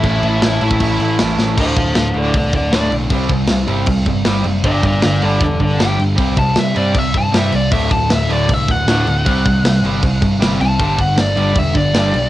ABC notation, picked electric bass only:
X:1
M:4/4
L:1/8
Q:1/4=156
K:Amix
V:1 name="Picked electric bass" clef=bass
A,,, A,,, A,,, A,,, A,,, A,,, A,,, A,,, | [K:Clyd] D,,, D,,, D,,, D,,, C,, D,,, D,,, B,,, | C,, C,, C,, G,,, C,, G,,, G,,, F,,, | G,,, G,,, G,,, G,,, E,,, G,,, G,,, G,,, |
C,, C,, C, G,, C,, G,, G,, C,, | D,,, D,,, D,,, D,,, C,, D,,, D,,, D,,, | C,, C,, C,, G,,, C,, G,,, G,,, C,, | G,,, G,,, G,,, G,,, E,,, G,,, G,,, B,,, |]